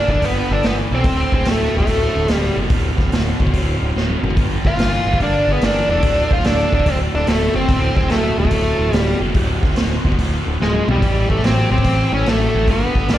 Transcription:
Already playing: A#3 B3 D4 F4
0.08 G1 G2 E3 D4 A4, kick
0.15 kick
0.22 G1 G2 D3 B3 G4, kick, open hi-hat
0.50 G1 D4 A4
0.63 G1 G2 E3 B3 G4, snare, open hi-hat
0.91 B1 G2 E3 C4 A4
1.04 D1 D2 A2 G3 C#4 F#4, kick, open hi-hat
1.19 F#3 C4 F5
1.32 D1 C4 G#4, kick
1.40 snare
1.45 D1 D2 B2 F#4, snare, open hi-hat
1.51 A3
1.74 D1 D2 B2 F#4
1.79 A3, kick
1.86 D1 D2 A2, kick, open hi-hat
2.15 D1
2.28 D1 D2 B2, snare, open hi-hat
2.33 G3 E4
2.57 F#1 D2 B2
2.70 D1 D2 A2, kick, open hi-hat
2.98 D1, kick, snare
3.11 D1 D2 B2, snare, open hi-hat
3.40 D1 D2 B2, kick
3.47 kick
3.53 D1 D2 A2, kick, open hi-hat
3.81 D1
3.94 D1 D2 B2, snare
4.10 high tom
4.23 F#1 D2 B2, mid tom
4.30 floor tom
4.36 G1 G2 D3 G3 B3 F4, kick, open hi-hat
4.64 G1 F4 B4, kick, snare
4.73 G1, snare
4.79 G2 E3, snare, open hi-hat
5.05 G1 G2 E3
5.14 kick
5.20 G1 G2 D3 D4 A#4, kick, open hi-hat
5.47 G1 G#4
5.52 B3
5.61 G1 G2 E3 D4 A#4, snare, open hi-hat
5.89 E1 G2 E3 D4 A4
6.02 D1 D2 A2 F#3 C4 F5, kick, open hi-hat
6.31 D1 F4 C5, kick
6.39 snare
6.44 D1 D2 B2 D4 A4, snare, open hi-hat
6.72 D1 D2 B2 D4 A4, kick
6.79 kick
6.86 D1 D2 A2 C4 A4, kick, open hi-hat
7.13 D1 D4 A4
7.27 D1 D2 B2 A3 F#4, snare, open hi-hat
7.54 F#1 D2 B2 C4 A4
7.68 D1 D2 A2, kick, open hi-hat
7.96 D1 C4 G#4, kick, snare
8.09 D1 D2 B2 A3 F#4, snare, open hi-hat
8.38 D1 D2 B2 A3 F#4
8.45 kick
8.51 D1 D2 A2, kick, open hi-hat
8.79 D1
8.92 D1 D2 B2 G3 E4, snare, open hi-hat
9.21 F#1 D2 B2
9.34 D1 D2 A2 C#4 F#4 G4, kick, open hi-hat
9.49 C4 F4 F#4
9.63 D1, kick, snare
9.71 snare
9.76 D1 D2 B2, snare, open hi-hat
10.04 D1 D2 B2, kick
10.12 kick
10.18 D1 D2 A2, kick, open hi-hat
10.46 D1
10.60 D1 D2 B2 G#3 F4, snare
10.74 high tom
10.88 B1 D2 B2 G3 E4, mid tom
10.96 floor tom
11.02 A1 A2 C#3 E3 C4 G4, kick, open hi-hat
11.30 A1 A3 G4, kick
11.39 A1 A2, snare
11.44 F#3 C4 G4, snare, open hi-hat
11.71 A1 A2 F#3 C4 G4
11.78 kick
11.84 A1 A2 E3, kick, open hi-hat
12.12 A1 C#4 A4
12.26 A1 A2 F#3 A3 G4, snare, open hi-hat
12.54 A1 A2 F#3
12.67 G1 G2 D3 B3 F4 G4 A#5, kick, open hi-hat
12.95 G1, kick, snare
13.08 G1 G2 E3 A#4, snare, open hi-hat
13.14 D4

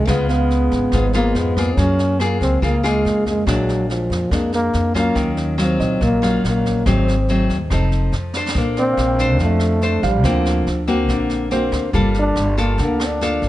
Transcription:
Already playing: D#5 G#5 A#5
0.07 C#2 C#3 G#3 B3 F4, kick, cross-stick, snare
0.29 B3 F5, snare
0.50 snare
0.71 G#1, kick, snare
0.92 G#1 G#2 G#3 B3 F4, kick, cross-stick, snare
1.13 G#3 A#3 B3 F4, snare
1.35 F2 B3, snare
1.56 A#3 F4 G#4, kick, cross-stick, snare
1.76 F#2 F#3 C#4, kick, snare
1.99 snare
2.20 A#3 F4 G#4, cross-stick, snare
2.41 C#2 C4, kick, snare
2.62 C#2 C#3 A#3 F4 G#4, kick, snare
2.83 G#3 A#3 F4 G#4, cross-stick, snare
3.05 F2, snare
3.26 G#3, kick, snare
3.47 A#1 A#2 F#3 G#3 D4, kick, cross-stick, snare
3.69 snare
3.90 F3, snare
4.10 F2, kick, snare
4.31 F2 G#3 A#3 D4, kick, cross-stick, snare
4.52 A#3, snare
4.73 F2, snare
4.94 F#3 A#3 C#4 F4, kick, cross-stick, snare
5.15 D#2 D#3, kick, snare
5.37 snare
5.58 F#3 C4 F4, cross-stick, snare
5.80 A#1 D#5, kick, snare
6.01 A#1 A#2 A#3, kick, snare
6.22 F#3 C#4 F4, cross-stick, snare
6.44 A#1 A#3, snare
6.65 kick, snare
6.86 G#1 G#2 F#3 A3 C4, kick, cross-stick, snare
7.08 snare
7.28 F#3 A3 C4, snare
7.49 D#2, kick, snare
7.70 F1 F3 C4 D#4 A4, kick, cross-stick, snare
7.92 snare
8.12 F2, snare
8.34 D4 A4 C5, snare
8.48 snare
8.55 A#1 A#3, kick, snare
8.77 C4 D5, snare
8.93 F5
8.97 A#1, cross-stick, snare
9.08 G5
9.18 D4 A4 C5, kick, snare
9.39 F2 F3 A3, kick, snare
9.60 cross-stick, snare
9.81 D4 A4 C5, snare
10.03 A1 G3 F5, kick, snare
10.24 D2 D3 F3 A#3 C4, kick, cross-stick, snare
10.45 snare
10.67 D2, snare
10.87 A#3 C4 F#4, kick, snare
11.09 A#1 D3, kick, cross-stick, snare
11.29 snare
11.51 A#3 C4 F#4 C5, snare
11.72 D2, kick, cross-stick, snare
11.93 G1 G3 A#3 F4 A4, kick, snare
12.14 snare
12.19 D4
12.36 G1, cross-stick, snare
12.57 A#3 F4 A4, kick, snare
12.78 D2 D3, kick, snare
12.82 A#3
13.00 cross-stick, snare
13.06 D4
13.21 A#3 F4 A4, snare
13.42 G1, kick, snare

